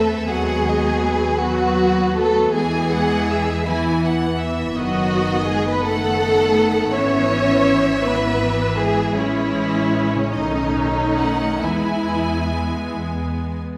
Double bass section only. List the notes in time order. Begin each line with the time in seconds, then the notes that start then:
Already playing: E2
0.29 D#2
2.56 E2
4.77 F#1
6.95 G#1
9.17 A1
10.35 B1
11.65 E2